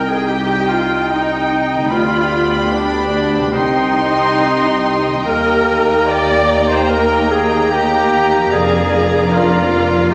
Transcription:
Already playing: C2 C3 G3 C4 D#4 C5 D#5 G5
0.08 G#4
0.28 D#4 G4 G5
0.68 F4
1.09 D#4 G5
1.74 D3
1.78 G3
1.83 D4
1.87 D2 F4 B4 D5 G5
1.92 D2 B3 G4 B5
2.70 B3 D4 G5
3.37 C3
3.41 G3
3.46 D#4
3.53 C2 C4 D#4 D#5 G5 C6
5.07 D#3
5.12 G3
5.16 D#4
5.21 D#2 A#4
5.25 D#2 A#3 G4 A#4 G5 A#5
6.07 D5
6.67 C5
6.88 A#3 A#4 G5
7.30 G#4
7.71 A#3 G4 G5
8.35 F3
8.39 A#3
8.44 D4
8.48 F1 F2 A#3 D4 G#4 A#4 D5 F5
8.52 G#4
9.32 A#3 F4 D5
9.95 D#3
10.00 A#3
10.04 D#4
10.09 A#4 D#5 A#5

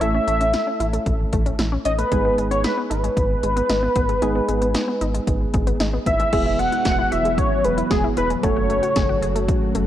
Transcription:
0.01 A1 A3 C#4 E4 A4 E5, closed hi-hat
0.15 C#4
0.28 A1 A3, closed hi-hat
0.41 C#4, closed hi-hat
0.54 E4, snare, closed hi-hat
0.67 C#4
0.80 A1 E4, closed hi-hat
0.93 A3, closed hi-hat
1.06 A1, kick, closed hi-hat
1.33 A1 A3, kick, closed hi-hat
1.46 C#4, closed hi-hat
1.59 A1 E4, snare, closed hi-hat
1.72 C#4
1.85 A1 C#4 D#5, closed hi-hat
1.98 A3 B4, closed hi-hat
2.12 G#1 G#3 B3 D#4 G#4, kick, closed hi-hat
2.25 B3
2.38 G#1 G#3, closed hi-hat
2.51 B3 C#5, closed hi-hat
2.64 D#4 B4, snare, closed hi-hat
2.77 B3
2.90 G#1 D#4 B4, closed hi-hat
3.04 G#3, closed hi-hat
3.17 G#1, kick, closed hi-hat
3.43 G#1 G#3, closed hi-hat
3.57 B3, closed hi-hat
3.70 G#1 D#4, snare, closed hi-hat
3.83 B3
3.96 G#1 B3, kick, closed hi-hat
4.09 G#3, closed hi-hat
4.22 G#1 G#3 B3 D#4 G#4, closed hi-hat
4.35 B3
4.49 G#1 G#3, closed hi-hat
4.62 B3, closed hi-hat
4.75 D#4, snare, closed hi-hat
4.88 B3
5.01 G#1 D#4, closed hi-hat
5.14 G#3, closed hi-hat
5.27 G#1, kick, closed hi-hat
5.54 G#1 G#3, kick, closed hi-hat
5.67 B3, closed hi-hat
5.80 G#1 D#4, snare, closed hi-hat
5.93 B3
6.06 G#1 B3 E5, kick, closed hi-hat
6.20 G#3, closed hi-hat
6.32 E1 E3 F#3 G#3 B3 E4 F#4 G#4, kick, closed hi-hat, crash
6.46 E4
6.59 G#3 F#5, closed hi-hat
6.72 E4, closed hi-hat
6.85 E1 F#4 F#5, kick, snare, closed hi-hat
6.99 E4
7.12 E1 F#4 E5, closed hi-hat
7.25 G#3, closed hi-hat
7.38 C#5, kick, closed hi-hat
7.64 E1 G#3 B4, closed hi-hat
7.78 E4, closed hi-hat
7.91 E1 F#4 G#4, kick, snare, closed hi-hat
8.04 E4
8.17 E1 E4 B4, closed hi-hat
8.30 G#3, closed hi-hat
8.43 F#1 C#3 A3 C#4 F#4 A4 C#5, kick, closed hi-hat
8.56 F#4
8.70 A3, closed hi-hat
8.83 F#4, closed hi-hat
8.96 F#1 G#4, kick, snare, closed hi-hat
9.09 F#4
9.22 F#1 G#4, closed hi-hat
9.35 A3, closed hi-hat
9.48 kick, closed hi-hat
9.75 F#1 A3, closed hi-hat

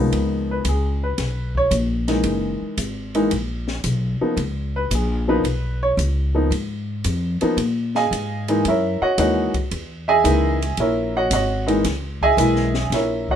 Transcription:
Already playing: C2 C#2 F3 A#3 B3 D#4
0.12 C#2, ride
0.51 B4
0.65 C#2, hi-hat pedal, ride
0.69 G#4
1.03 B4
1.18 B1, snare, ride
1.55 C#5, kick
1.71 A#1, hi-hat pedal, ride
2.08 E3 G#3 A#3 D#4, snare, ride
2.24 F#1, ride
2.61 muted upright bass stroke
2.77 G#1, hi-hat pedal, ride
3.15 E3 G#3 A#3 D#4, ride
3.31 A#1, ride
3.68 snare
3.84 B1, hi-hat pedal, ride
4.21 F3 A#3 B3 D#4, muted upright bass stroke
4.37 C#2, ride
4.76 B4
4.91 A#1, hi-hat pedal, ride
4.95 G#4
5.28 F3 A#3 B3 D#4 B4
5.44 B1, ride
5.83 C#5
5.97 C#2, hi-hat pedal, ride
6.35 F3 A#3 B3 D#4
6.51 G#2, ride
7.04 F2, hi-hat pedal, ride
7.41 F3 A#3 B3 D#4, muted upright bass stroke, ride
7.57 A#2, ride
7.95 G#4 D#5 F5 G#5, snare
8.11 G#2, hi-hat pedal, ride
8.48 E3 G#3 A#3 D#4, ride
8.65 F#2 E4 A#4 C#5 E5, ride
9.01 F#4 C#5 D#5 F#5, muted upright bass stroke
9.18 D#2 E3 G#3 A#3 D#4 F#4 C#5 D#5 F#5, hi-hat pedal, ride
9.54 muted upright bass stroke, kick, ride
9.71 E2, ride
10.08 G#4 D#5 E5 G#5
10.24 C#2 E3 G#3 A#3 D#4, hi-hat pedal, ride
10.62 ride
10.77 A#1 E4 A#4 C#5 E5, ride
11.17 F#4 C#5 D#5 F#5
11.31 G#1 F#4 C#5 D#5 F#5, hi-hat pedal, ride
11.67 E3 G#3 A#3 D#4, ride
11.84 C#2, snare, ride
12.22 G#4 D#5 E5 G#5, kick
12.37 B1 E3 G#3 A#3 E4, hi-hat pedal, ride
12.56 snare
12.74 snare
12.90 A#1 E4 E5, snare, ride
12.94 A#4 C#5
13.28 F#4 C#5 D#5 F#5, kick

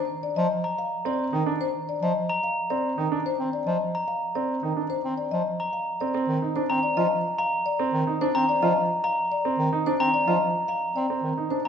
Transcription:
Already playing: C5
0.23 D5
0.36 F3 D#5
0.64 A#5
0.79 F5
1.05 C4 D5
1.33 D#3 D#4
1.46 D4
1.61 C5
1.89 D5
2.02 F3 D#5
2.29 A#5
2.44 F5
2.70 C4 D5
2.98 D#3 D#4
3.12 D4
3.26 C5
3.39 C4
3.53 D5
3.67 F3 D#5
3.95 A#5
4.08 F5
4.35 C4 D5
4.63 D#3 D#4
4.77 D4
4.90 C5
5.05 C4
5.18 D5
5.31 F3 D#5
5.60 A#5
5.73 F5
6.00 C4 D5
6.15 C4
6.28 D#3
6.42 D#4
6.56 D4 C5
6.70 C4 A#5
6.83 D5
6.97 F3 F4 D#5
7.38 F5 A#5
7.66 D5
7.79 C4
7.93 D#3
8.07 D#4
8.21 D4 C5
8.35 C4 A#5
8.49 D5
8.62 F3 F4 D#5
9.04 F5 A#5
9.32 D5
9.45 C4
9.59 D#3
9.73 D#4
9.86 D4 C5
9.99 C4 A#5
10.14 D5
10.27 F3 F4 D#5
10.68 F5 A#5
10.96 C4 D5
11.10 C4
11.23 D#3
11.38 D#4
11.50 D4 C5

